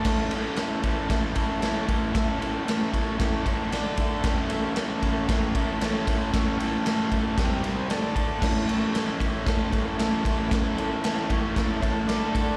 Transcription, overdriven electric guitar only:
\new Staff \with { instrumentName = "Overdriven electric guitar" } { \time 4/4 \key a \major \tempo 4 = 115 <a, e a cis' e' a'>8 <a, e a cis' e' a'>8 <a, e a cis' e' a'>8 <a, e a cis' e' a'>8 <a, e a cis' e' a'>8 <a, e a cis' e' a'>8 <a, e a cis' e' a'>8 <a, e a cis' e' a'>8 | <a, e a cis' e' a'>8 <a, e a cis' e' a'>8 <a, e a cis' e' a'>8 <a, e a cis' e' a'>8 <a, e a cis' e' a'>8 <a, e a cis' e' a'>8 <d a d' a'>8 <d a d' a'>8 | <a, e a cis' e' a'>8 <a, e a cis' e' a'>8 <a, e a cis' e' a'>8 <a, e a cis' e' a'>8 <a, e a cis' e' a'>8 <a, e a cis' e' a'>8 <a, e a cis' e' a'>8 <a, e a cis' e' a'>8 | <a, e a cis' e' a'>8 <a, e a cis' e' a'>8 <a, e a cis' e' a'>8 <a, e a cis' e' a'>8 <c g c' g'>8 <c g c' g'>8 <d a d' a'>8 <d a d' a'>8 |
<a, e a cis' e' a'>8 <a, e a cis' e' a'>8 <a, e a cis' e' a'>8 <a, e a cis' e' a'>8 <a, e a cis' e' a'>8 <a, e a cis' e' a'>8 <a, e a cis' e' a'>8 <a, e a cis' e' a'>8 | <a, e a cis' e' a'>8 <a, e a cis' e' a'>8 <a, e a cis' e' a'>8 <a, e a cis' e' a'>8 <a, e a cis' e' a'>8 <a, e a cis' e' a'>8 <d a d' a'>8 <d a d' a'>8 | }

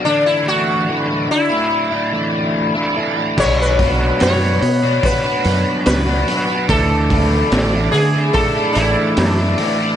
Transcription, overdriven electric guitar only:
\new Staff \with { instrumentName = "Overdriven electric guitar" } { \time 4/4 \key d \major \tempo 4 = 72 <d e a d' e'>8 <e a d' e'>8 <d e a d' e'>16 <a d' e'>8 <a d' e'>8 <a d' e'>16 <e a d' e'>8. <a d' e'>16 <e a d' e'>16 <a d' e'>16 | <b, fis b d' fis'>8 <fis b d' fis'>8 <b, fis b d' fis'>16 <b d' fis'>8 <b d' fis'>8 <b d' fis'>16 <fis b d' fis'>8. <b d' fis'>16 <fis b d' fis'>16 <b d' fis'>16 | <d e a d' e'>8 <e a d' e'>8 <d e a d' e'>16 <a d' e'>8 <a d' e'>8 <a d' e'>16 <e a d' e'>8. <a d' e'>16 <e a d' e'>16 <a d' e'>16 | }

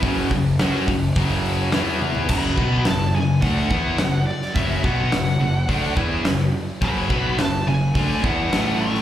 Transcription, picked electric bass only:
\new Staff \with { instrumentName = "Picked electric bass" } { \clef bass \time 4/4 \key e \dorian \tempo 4 = 106 fis,,8 fis,,8 fis,8 fis,,8 fis,,4 e,4 | \key fis \minor fis,,8 b,,8 fis,,8 fis,,8 d,8 e,8 fis,,8 r8 | fis,,8 b,,8 fis,,8 fis,,8 d,8 e,8 fis,,8 r8 | fis,,8 b,,8 fis,,8 fis,,8 d,8 e,8 a,,4 | }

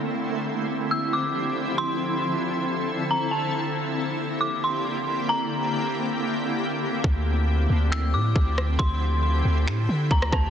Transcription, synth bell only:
\new Staff \with { instrumentName = "Synth bell" } { \time 4/4 \key d \minor \tempo 4 = 137 r2 e'''8 d'''4. | c'''2. bes''8 a''8 | r2 d'''8 c'''4. | bes''2 r2 |
r2 e'''8 d'''4. | c'''2. bes''8 a''8 | }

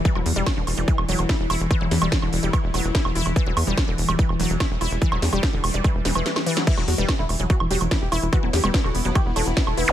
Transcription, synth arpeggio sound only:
\new Staff \with { instrumentName = "Synth arpeggio sound" } { \clef bass \time 4/4 \key e \minor \tempo 4 = 145 e16 fis16 r16 g16 r16 d16 r16 g16 e16 r16 fis16 r16 e'16 r16 e'16 r16 | e16 fis16 r16 g16 r16 d16 r16 g16 e16 r16 fis16 r16 e'16 r16 e'16 r16 | e16 fis16 r16 g16 r16 d16 r16 g16 e16 r16 fis16 r16 e'16 r16 e'16 r16 | e16 fis16 r16 g16 r16 d16 r16 g16 e16 r16 e16 e16 e16 r16 e16 fis16 |
e16 fis16 r16 g16 r16 d16 r16 fis16 e16 r16 fis16 r16 e'16 r16 e'16 r16 | e16 fis16 r16 g16 r16 d16 r16 fis16 e16 r16 fis16 r16 e'16 r16 e'16 r16 | }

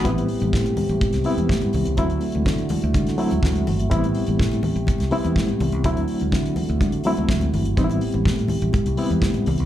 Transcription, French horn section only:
\new Staff \with { instrumentName = "French horn section" } { \time 4/4 \key a \dorian \tempo 4 = 124 << { <c g'>1 | <d e' fis'>1 | g'1 | <d e' fis'>1 |
g'1 | } \\ { a1 | c1~ | c1 | c1~ |
c1 | } >> }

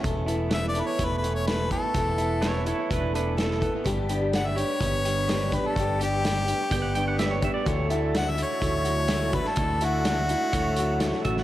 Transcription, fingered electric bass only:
\new Staff \with { instrumentName = "Fingered electric bass" } { \clef bass \time 4/4 \key g \lydian \tempo 4 = 126 e,,2 e,,2 | e,,2 e,,2 | g,,2 g,,2 | g,,2 g,,2 |
d,2 d,2 | d,2 d,4. a,,8 | }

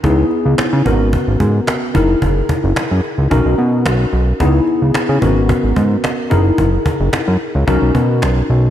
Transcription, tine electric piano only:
\new Staff \with { instrumentName = "Tine electric piano" } { \time 4/4 \key cis \dorian \tempo 4 = 110 <b dis' e' gis'>4. <b cis' fis' ais'>2 <dis' e' gis' ais'>8~ | <dis' e' gis' ais'>2 <cis' dis' fis' ais'>2 | <b dis' e' gis'>4. <b cis' fis' ais'>2 <dis' e' gis' ais'>8~ | <dis' e' gis' ais'>2 <cis' dis' fis' ais'>2 | }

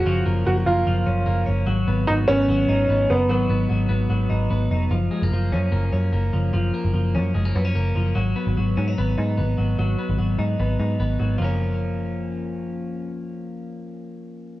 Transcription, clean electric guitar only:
\new Staff \with { instrumentName = "Clean electric guitar" } { \time 4/4 \key fis \major \tempo 4 = 148 <eis ais cis'>8 ais8 eis8 ais8 eis8 cis'8 ais8 cis'8 | fis8 b8 fis8 b8 fis8 dis'8 b8 dis'8 | fis8 b8 fis8 b8 fis8 dis'8 b8 dis'8 | eis8 gis16 ais16 eis8 cis'8 ais8 cis'8 ais8 eis8 |
eis8 ais8 eis8 cis'8 gis16 ais16 b16 cis'16 ais8 eis8 | fis8 b8 fis8 cis'16 dis'16 b8 dis'8 b8 fis8 | fis8 b8 fis8 dis'8 b8 dis'8 b8 fis8 | <eis ais cis'>1~ |
<eis ais cis'>1 | }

